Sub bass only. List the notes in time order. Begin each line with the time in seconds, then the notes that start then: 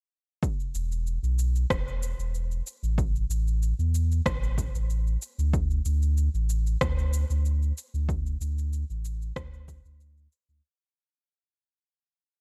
0.74 E1
1.23 B1
1.70 E1
2.19 E1
2.83 A1
3.30 A1
3.79 E2
4.26 A1
4.75 A1
5.39 D2
5.85 D2
6.34 A1
6.81 D2
7.30 D2
7.94 D2
8.41 D2
8.90 A1
9.36 D2
9.85 D2
10.49 D2